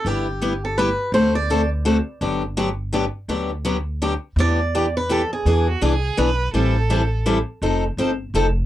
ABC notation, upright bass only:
X:1
M:3/4
L:1/8
Q:"Swing" 1/4=166
K:G
V:1 name="Upright bass" clef=bass
G,,,6 | D,,6 | G,,,6 | D,,6 |
[K:Em] E,,6 | E,,2 C,,2 B,,,2 | A,,,6 | =F,,,2 G,,,2 F,,,2 |]